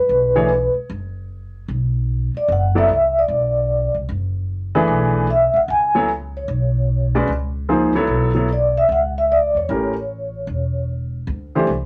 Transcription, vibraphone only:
0.00 0.70 B4 medium
2.37 2.49 D5 medium
2.52 2.75 F#5 medium
2.78 3.18 E5 medium
3.19 3.93 D5 medium
5.30 5.56 E5 medium
5.56 5.69 F#5 medium
5.70 6.07 G#5 medium
6.37 7.12 C#5 medium
8.53 8.75 D5 medium
8.77 8.91 E5 medium
8.92 9.03 F#5 medium
9.18 9.30 E5 medium
9.32 9.57 D5 medium
9.57 10.86 C#5 medium

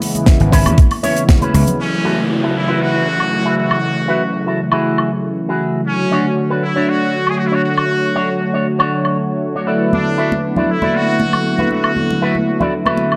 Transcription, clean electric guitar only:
0.40 muted clean electric guitar stroke medium
0.52 0.78 C#4 loud
0.52 0.78 E4 medium
0.52 0.78 B4 loud
1.03 1.23 C#4 loud
1.03 1.23 E4 loud
1.03 1.23 C#5 loud
1.41 1.79 C#4 medium
1.41 1.80 E4 medium
1.41 1.80 B4 loud
2.05 2.18 E4 medium
2.05 2.18 F#4 medium
2.05 2.18 A4 loud
2.30 muted clean electric guitar stroke soft
2.43 2.56 E4 medium
2.43 2.56 F#4 medium
2.43 2.56 A4 medium
2.68 3.06 E4 loud
2.68 3.07 F#4 medium
2.68 3.07 B4 loud
3.44 3.77 E4 medium
3.44 3.77 F#4 medium
3.44 3.77 G#4 medium
4.08 4.21 E4 loud
4.08 4.22 F#4 medium
4.08 4.22 B4 loud
4.33 muted clean electric guitar stroke soft
4.47 4.59 E4 medium
4.47 4.59 F#4 medium
4.47 4.59 A4 medium
4.72 5.10 E4 loud
4.72 5.10 F#4 medium
4.72 5.10 G#4 medium
5.48 5.80 E4 medium
5.48 5.80 F#4 medium
5.48 5.80 G#4 medium
6.12 6.25 D4 loud
6.12 6.25 F#4 medium
6.12 6.25 C#5 loud
6.37 muted clean electric guitar stroke soft
6.50 6.63 D4 medium
6.50 6.63 F#4 medium
6.50 6.63 B4 medium
6.76 7.13 D4 loud
6.76 7.14 F#4 medium
6.76 7.14 C#5 loud
7.52 7.83 D4 medium
7.52 7.84 F#4 medium
7.52 7.84 C#5 medium
8.15 8.28 D4 medium
8.15 8.28 F#4 medium
8.15 8.29 C#5 loud
8.40 muted clean electric guitar stroke soft
8.53 8.66 D4 medium
8.53 8.66 F#4 medium
8.53 8.66 C#5 medium
8.79 9.17 D4 medium
8.79 9.17 F#4 medium
8.79 9.17 C#5 loud
9.55 9.68 D4 medium
9.55 9.66 F#4 medium
9.55 9.67 C#5 medium
9.67 10.09 E4 medium
9.67 10.09 F#4 medium
9.67 10.09 A4 medium
9.67 10.09 D5 medium
10.18 10.32 E4 loud
10.18 10.32 F#4 medium
10.18 10.32 A4 medium
10.18 10.32 E5 loud
10.44 muted clean electric guitar stroke soft
10.57 10.69 E4 medium
10.57 10.69 F#4 medium
10.57 10.69 A4 medium
10.57 10.70 D5 medium
10.82 11.20 E4 loud
10.82 11.20 F#4 medium
10.82 11.20 A4 medium
10.82 11.20 D5 loud
11.58 11.90 E4 medium
11.58 11.90 F#4 medium
11.58 11.90 A4 medium
11.58 11.91 B4 medium
12.22 12.35 E4 loud
12.22 12.35 F#4 medium
12.22 12.35 A4 medium
12.22 12.35 B4 loud
12.47 muted clean electric guitar stroke soft
12.60 12.73 E4 medium
12.60 12.73 F#4 medium
12.60 12.73 A4 medium
12.60 12.73 D5 medium
12.85 13.16 E4 loud
12.85 13.16 F#4 medium
12.85 13.16 A4 medium
12.85 13.16 B4 loud

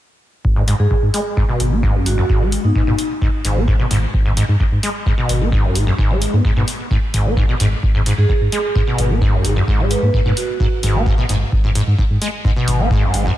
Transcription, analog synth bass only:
0.45 0.72 G#1 loud
0.79 0.87 G#2 medium
1.03 1.10 G#2 medium
1.60 1.99 G#1 medium
2.06 2.21 G#1 medium
2.29 2.57 G#1 loud
2.64 2.71 G#2 medium
2.87 2.94 G#2 medium
3.45 3.84 G#1 medium
3.91 4.05 G#1 medium
4.14 4.42 G#1 loud
4.49 4.56 G#2 medium
4.72 4.79 G#2 medium
5.29 5.69 G#1 medium
5.75 5.90 G#1 medium
5.99 6.26 G#1 loud
6.33 6.40 G#2 medium
6.56 6.64 G#2 medium
7.14 7.53 G#1 medium
7.60 7.75 G#1 medium
7.83 8.11 G#1 loud
8.18 8.25 G#2 medium
8.41 8.48 G#2 medium
8.99 9.38 G#1 loud
9.45 9.59 G#1 medium
9.68 9.96 G#1 loud
10.03 10.10 G#2 medium
10.26 10.33 G#2 medium
10.83 11.22 G#1 loud
11.29 11.44 G#1 medium
11.52 11.80 G#1 loud
11.87 11.94 G#2 medium
12.10 12.17 G#2 medium
12.68 13.07 G#1 loud
13.14 13.28 G#1 medium

